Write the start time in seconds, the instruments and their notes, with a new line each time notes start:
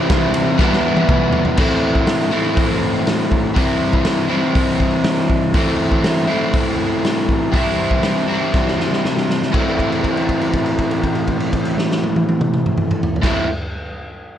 Already playing: overdriven electric guitar C3 E3 G3 C4 E4
0.10 kick, snare, ride
0.34 ride
0.58 overdriven electric guitar E3 G3 B3, kick, snare
0.62 overdriven electric guitar E4
0.73 snare
0.97 high tom
1.09 kick, mid tom
1.33 floor tom
1.45 floor tom
1.57 overdriven electric guitar A2 E3 A3 C4 E4, kick, crash
1.95 kick
2.07 snare, open hi-hat
2.31 overdriven electric guitar E3 A3 C4 E4
2.36 overdriven electric guitar A2
2.57 kick, open hi-hat
3.07 snare, open hi-hat
3.32 kick
3.54 overdriven electric guitar C3 E3 G3 C4, kick, open hi-hat
3.59 overdriven electric guitar E4
3.93 kick
4.04 snare, open hi-hat
4.28 overdriven electric guitar E3 G3 C4 E4
4.33 overdriven electric guitar C3
4.55 kick, open hi-hat
4.80 kick
5.04 snare, open hi-hat
5.30 kick
5.54 overdriven electric guitar A2 E3 A3 C4 E4, kick, open hi-hat
5.92 kick
6.04 snare, open hi-hat
6.27 overdriven electric guitar A2 E3 A3 C4 E4
6.54 kick, open hi-hat
7.04 snare, open hi-hat
7.29 kick
7.52 overdriven electric guitar C3 E3 G3 C4, kick, open hi-hat
7.56 overdriven electric guitar E4
7.91 kick
8.03 snare, open hi-hat
8.28 overdriven electric guitar E3 G3 C4 E4
8.32 overdriven electric guitar C3
8.54 kick, snare
8.68 snare
8.80 snare
8.93 snare
9.05 snare
9.17 snare
9.30 snare
9.42 snare
9.52 overdriven electric guitar A2 E3 A3 C4, kick, crash
9.56 overdriven electric guitar E4
9.79 kick, crash
9.92 crash
10.04 kick, crash
10.17 crash
10.29 kick, crash
10.41 crash
10.53 kick, crash
10.66 crash
10.78 kick, crash
10.91 crash
11.04 kick, crash
11.15 crash
11.27 kick, crash
11.40 crash
11.53 kick, crash
11.65 crash
11.78 snare
11.91 snare
12.04 high tom
12.16 high tom
12.29 high tom
12.41 mid tom
12.54 mid tom
12.66 mid tom
12.77 mid tom
12.91 mid tom
13.03 floor tom
13.16 floor tom
13.22 overdriven electric guitar A2 E3 A3 C4, kick, snare, crash
13.26 overdriven electric guitar E4